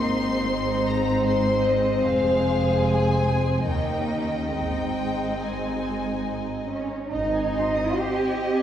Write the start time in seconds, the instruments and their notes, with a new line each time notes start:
Already playing: double bass section G#1, cello section G#2, viola section A#3 C4, violin section D#4 C5 C6
0.50 viola section G#3
0.88 violin section A#5
1.26 violin section C6
1.65 violin section D#5
2.05 double bass section F1, cello section F2, violin section G#4 F5
2.83 violin section G#5
3.66 double bass section D#2, cello section D#2, viola section A#3 C#4, violin section D#4 D#5 G5
4.52 double bass section G#1, cello section G#2, viola section G#3 C4, violin section G5
5.40 violin section G#5
6.68 cello section C#4
7.12 double bass section G#1, viola section C4, cello section D#4, violin section D#5
7.33 violin section G#5
7.55 violin section C6
7.74 violin section D#6
7.94 cello section G4, violin section C6
8.14 violin section G#5
8.33 violin section D#5
8.54 violin section G#5